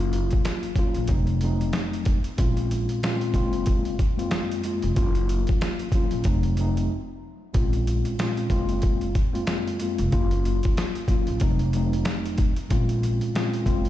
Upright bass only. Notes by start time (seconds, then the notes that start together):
Already playing: F#1
0.96 A#1
1.09 F1
2.39 A#1
3.34 F#1
4.83 F1
4.97 F#1
6.12 A#1
6.25 F1
7.55 A#1
8.50 F#1
9.99 F1
10.13 F#1
11.28 A#1
11.41 F1
12.71 A#1
13.66 F#1